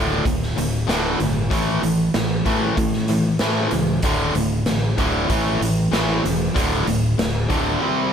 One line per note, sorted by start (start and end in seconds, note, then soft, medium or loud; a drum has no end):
0.00 0.20 D1 medium
0.00 0.23 D2 medium
0.00 0.23 A2 medium
0.00 0.23 D3 medium
0.25 0.51 D1 medium
0.25 0.53 D2 medium
0.25 0.54 A2 medium
0.25 kick loud
0.25 closed hi-hat medium
0.42 snare soft
0.56 0.84 D1 medium
0.56 0.85 D2 medium
0.56 0.85 A2 medium
0.56 closed hi-hat medium
0.87 1.14 D1 medium
0.87 1.17 D2 medium
0.87 1.18 A2 medium
0.87 1.18 D3 medium
0.87 snare loud
0.87 closed hi-hat medium
1.19 1.46 G1 medium
1.19 1.48 D2 medium
1.19 1.48 A2 medium
1.19 closed hi-hat medium
1.50 1.77 A1 medium
1.50 1.80 A2 medium
1.50 1.81 E3 medium
1.50 1.81 A3 loud
1.50 kick loud
1.50 closed hi-hat medium
1.81 2.09 A1 medium
1.81 2.10 A2 medium
1.81 2.11 E3 medium
1.81 closed hi-hat medium
2.14 2.40 A1 medium
2.14 2.43 A2 medium
2.14 2.43 E3 medium
2.14 snare loud
2.14 closed hi-hat medium
2.45 2.75 A2 medium
2.45 2.72 A2 medium
2.45 2.75 E3 medium
2.45 2.76 A3 medium
2.45 kick medium
2.45 closed hi-hat medium
2.77 3.05 A2 medium
2.77 3.29 A2 medium
2.77 3.06 E3 medium
2.77 kick loud
2.77 closed hi-hat medium
2.93 snare soft
3.08 3.37 A2 medium
3.08 3.37 E3 medium
3.08 closed hi-hat medium
3.39 3.70 A2 medium
3.39 3.66 A2 medium
3.39 3.70 E3 medium
3.39 3.71 A3 medium
3.39 snare loud
3.39 closed hi-hat medium
3.71 3.98 C#2 medium
3.71 4.00 A2 medium
3.71 4.01 E3 medium
3.71 closed hi-hat medium
4.02 4.29 D1 medium
4.02 4.33 D2 medium
4.02 4.34 A2 medium
4.02 4.34 D3 medium
4.02 kick loud
4.02 closed hi-hat medium
4.34 4.61 D1 medium
4.34 4.63 D2 medium
4.34 4.64 A2 medium
4.34 closed hi-hat medium
4.66 4.92 A1 medium
4.66 4.95 D2 medium
4.66 4.95 A2 medium
4.66 snare loud
4.66 closed hi-hat medium
4.98 5.24 D1 medium
4.98 5.28 D2 medium
4.98 5.27 A2 medium
4.98 5.28 D3 loud
4.98 kick medium
4.98 closed hi-hat medium
5.29 5.56 A1 medium
5.29 5.59 A2 medium
5.29 5.59 E3 medium
5.29 5.59 A3 loud
5.29 kick loud
5.29 closed hi-hat medium
5.61 5.87 A1 medium
5.61 5.89 A2 medium
5.61 5.90 E3 medium
5.61 closed hi-hat medium
5.91 6.19 A1 medium
5.91 6.22 A2 medium
5.91 6.22 E3 medium
5.91 6.22 A3 loud
5.91 snare loud
5.91 closed hi-hat medium
6.24 6.51 E1 medium
6.24 6.52 A2 medium
6.24 6.52 E3 medium
6.24 closed hi-hat medium
6.54 6.82 D1 medium
6.54 6.85 D2 medium
6.54 6.85 A2 medium
6.54 6.85 D3 loud
6.54 kick loud
6.54 closed hi-hat medium
6.87 7.13 D1 medium
6.87 7.16 D2 medium
6.87 7.16 A2 medium
6.87 closed hi-hat medium
7.18 7.45 D1 medium
7.18 7.47 D2 medium
7.18 7.47 A2 medium
7.18 snare loud
7.18 closed hi-hat medium
7.49 7.76 D1 medium
7.49 7.79 D2 medium
7.49 7.79 A2 loud
7.49 7.80 D3 loud
7.49 kick medium
7.49 closed hi-hat medium
7.81 8.11 C3 medium
7.81 8.11 G3 medium
7.81 8.12 C4 medium